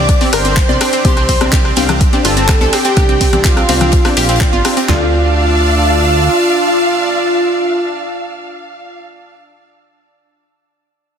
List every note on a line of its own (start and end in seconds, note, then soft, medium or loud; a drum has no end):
0.00 0.16 C2 medium
0.00 4.85 C4 medium
0.00 4.85 D4 medium
0.00 4.85 G4 medium
0.00 0.23 D5 loud
0.00 0.23 D6 loud
0.09 kick loud
0.09 cross-stick soft
0.09 closed hi-hat medium
0.09 ride medium
0.21 0.33 C4 loud
0.21 0.27 C4 medium
0.21 0.33 D4 medium
0.21 0.33 G4 medium
0.21 0.33 C5 medium
0.21 0.33 D5 loud
0.21 snare medium
0.21 open hi-hat medium
0.21 high conga medium
0.33 0.64 G1 medium
0.33 0.39 A#4 loud
0.33 0.95 C5 loud
0.33 0.95 C6 loud
0.33 cross-stick medium
0.33 closed hi-hat medium
0.33 open hi-hat loud
0.33 ride medium
0.45 0.51 C4 medium
0.45 closed hi-hat medium
0.56 0.63 C4 medium
0.56 kick loud
0.56 cross-stick soft
0.56 snare loud
0.56 clap loud
0.56 closed hi-hat medium
0.56 closed hi-hat loud
0.56 ride medium
0.69 0.78 C2 medium
0.69 0.81 C4 medium
0.69 0.81 D4 medium
0.69 0.81 G4 medium
0.69 0.81 C5 medium
0.69 0.81 D5 medium
0.69 0.75 D5 loud
0.69 snare soft
0.69 high conga loud
0.81 0.87 C4 medium
0.81 cross-stick medium
0.81 closed hi-hat medium
0.81 open hi-hat loud
0.81 ride medium
0.93 0.99 C4 medium
0.93 snare soft
0.93 closed hi-hat medium
1.05 1.36 C2 loud
1.05 1.24 C4 medium
1.05 1.24 D4 medium
1.05 1.24 G4 medium
1.05 1.11 G4 loud
1.05 1.67 C5 loud
1.05 1.24 C5 medium
1.05 1.24 D5 medium
1.05 1.67 C6 loud
1.05 kick loud
1.05 closed hi-hat medium
1.05 closed hi-hat loud
1.05 ride medium
1.05 high conga loud
1.17 1.23 C4 medium
1.17 cross-stick soft
1.17 snare soft
1.17 closed hi-hat soft
1.29 1.35 C4 medium
1.29 kick medium
1.29 closed hi-hat medium
1.29 open hi-hat loud
1.29 ride medium
1.41 1.72 C2 medium
1.41 1.60 C4 medium
1.41 1.47 C4 medium
1.41 1.60 D4 medium
1.41 1.60 G4 medium
1.41 1.60 C5 medium
1.41 1.60 D5 medium
1.41 cross-stick medium
1.41 closed hi-hat medium
1.41 high conga medium
1.52 1.59 G4 medium
1.52 kick loud
1.52 snare loud
1.52 clap loud
1.52 closed hi-hat medium
1.52 ride medium
1.65 1.71 C4 medium
1.65 cross-stick soft
1.76 2.08 C2 medium
1.76 1.83 C4 medium
1.76 1.96 C4 loud
1.76 1.96 D4 medium
1.76 1.96 G4 medium
1.76 1.96 C5 medium
1.76 1.96 F5 loud
1.76 closed hi-hat medium
1.76 open hi-hat loud
1.76 ride medium
1.76 high conga loud
1.89 1.95 C4 medium
1.89 cross-stick medium
1.89 closed hi-hat medium
1.89 low conga medium
2.01 kick loud
2.01 closed hi-hat medium
2.01 ride medium
2.13 2.19 C4 medium
2.13 2.25 C4 loud
2.13 2.25 D4 medium
2.13 2.25 G4 medium
2.13 2.25 C5 medium
2.13 2.25 D5 loud
2.13 snare soft
2.13 closed hi-hat soft
2.13 high conga medium
2.25 2.56 G1 medium
2.25 2.31 F4 loud
2.25 2.74 A4 loud
2.25 2.73 A5 medium
2.25 cross-stick soft
2.25 snare loud
2.25 closed hi-hat medium
2.25 open hi-hat loud
2.25 ride medium
2.37 2.43 C4 medium
2.37 closed hi-hat medium
2.48 2.55 C4 medium
2.48 kick loud
2.48 cross-stick medium
2.48 clap loud
2.48 closed hi-hat medium
2.48 ride medium
2.61 2.70 C2 medium
2.61 2.73 C4 medium
2.61 2.73 D4 medium
2.61 2.73 G4 medium
2.61 2.67 A4 medium
2.61 2.73 C5 medium
2.61 2.73 D5 medium
2.61 snare loud
2.61 closed hi-hat medium
2.61 high conga loud
2.73 2.79 C4 medium
2.73 3.35 G4 loud
2.73 3.35 G5 loud
2.73 cross-stick soft
2.73 open hi-hat loud
2.73 ride medium
2.84 2.91 C4 medium
2.84 closed hi-hat medium
2.96 3.28 C2 loud
2.96 3.16 C4 medium
2.96 3.16 D4 medium
2.96 3.03 G4 loud
2.96 3.16 G4 medium
2.96 3.16 C5 medium
2.96 3.16 D5 medium
2.96 kick loud
2.96 cross-stick medium
2.96 snare loud
2.96 closed hi-hat medium
2.96 ride medium
2.96 high conga medium
3.09 3.15 C4 medium
3.09 closed hi-hat soft
3.21 3.27 C4 medium
3.21 kick medium
3.21 closed hi-hat medium
3.21 open hi-hat loud
3.21 ride medium
3.33 3.64 C2 loud
3.33 3.52 C4 medium
3.33 3.39 C4 medium
3.33 3.52 D4 medium
3.33 3.52 G4 medium
3.33 3.52 C5 medium
3.33 3.52 D5 medium
3.33 cross-stick soft
3.33 closed hi-hat medium
3.33 high conga medium
3.33 low conga medium
3.44 4.07 F4 loud
3.44 3.51 G4 medium
3.44 4.07 F5 loud
3.44 kick loud
3.44 snare loud
3.44 clap loud
3.44 closed hi-hat medium
3.44 ride medium
3.57 3.63 C4 medium
3.57 cross-stick medium
3.57 closed hi-hat soft
3.69 4.00 C2 medium
3.69 3.75 C4 medium
3.69 3.88 C4 loud
3.69 3.88 D4 medium
3.69 3.88 G4 medium
3.69 3.88 C5 medium
3.69 3.88 F5 loud
3.69 closed hi-hat medium
3.69 open hi-hat loud
3.69 ride medium
3.69 high conga loud
3.81 3.87 C4 medium
3.81 cross-stick soft
3.81 closed hi-hat medium
3.81 low conga medium
3.92 kick loud
3.92 closed hi-hat medium
3.92 ride medium
4.05 4.11 C4 medium
4.05 4.17 C4 medium
4.05 4.17 D4 medium
4.05 4.17 G4 medium
4.05 4.17 C5 medium
4.05 4.17 D5 loud
4.05 cross-stick medium
4.05 snare medium
4.05 open hi-hat medium
4.05 high conga medium
4.17 4.48 A#1 loud
4.17 4.79 F4 loud
4.17 4.23 G4 loud
4.17 4.79 F5 loud
4.17 snare medium
4.17 closed hi-hat medium
4.17 open hi-hat loud
4.17 ride medium
4.23 snare medium
4.23 closed hi-hat medium
4.29 4.35 C4 medium
4.29 snare medium
4.29 closed hi-hat medium
4.34 snare medium
4.34 closed hi-hat medium
4.40 4.47 C4 medium
4.40 4.53 C4 medium
4.40 4.53 D4 medium
4.40 4.53 G4 medium
4.40 4.53 C5 medium
4.40 4.53 D5 loud
4.40 kick loud
4.40 cross-stick soft
4.40 snare loud
4.40 clap loud
4.40 closed hi-hat medium
4.53 4.62 G1 medium
4.53 4.59 F4 loud
4.53 snare soft
4.53 high conga loud
4.64 4.77 C4 medium
4.64 4.71 C4 medium
4.64 4.77 D4 medium
4.64 4.77 G4 medium
4.64 4.77 C5 medium
4.64 4.77 D5 medium
4.64 cross-stick medium
4.64 snare loud
4.64 closed hi-hat medium
4.64 open hi-hat loud
4.64 ride medium
4.77 4.83 C4 medium
4.77 snare loud
4.77 closed hi-hat medium
4.89 6.29 D2 loud
4.89 9.00 D4 medium
4.89 9.00 F4 medium
4.89 9.00 F4 loud
4.89 9.00 F4 medium
4.89 9.00 A4 medium
4.89 9.00 D5 medium
4.89 9.00 F5 loud
4.89 9.00 A5 medium
4.89 9.00 E6 medium
4.89 snare loud
4.89 clap medium
4.89 floor tom loud